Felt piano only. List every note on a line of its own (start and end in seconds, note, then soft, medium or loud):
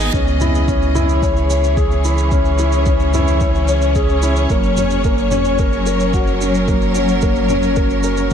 0.00 0.15 B3 loud
0.00 0.15 D#4 loud
0.00 0.15 G#4 medium
0.00 0.15 B4 medium
0.13 0.39 C#4 medium
0.41 0.67 E4 medium
0.68 0.83 C#4 loud
0.95 1.21 E4 loud
1.23 1.48 C#5 medium
1.50 1.76 C#5 medium
1.77 2.03 G#4 medium
2.05 2.30 E4 medium
2.32 2.58 C#4 medium
2.59 2.85 E4 medium
2.87 3.02 C#4 medium
3.14 3.40 E4 loud
3.42 3.67 C#5 medium
3.68 3.94 C#5 medium
3.96 4.21 G#4 medium
4.23 4.48 E4 medium
4.50 4.76 A#3 medium
4.78 5.03 C#4 medium
5.05 5.20 A#3 loud
5.32 5.58 C#4 loud
5.60 5.85 A#4 medium
5.86 6.12 A#4 medium
6.14 6.39 F#4 medium
6.41 6.67 C#4 medium
6.68 6.94 A#3 medium
6.96 7.21 C#4 medium
7.22 7.38 A#3 loud
7.50 7.76 C#4 medium
7.77 8.02 A#4 medium
8.04 8.30 A#4 medium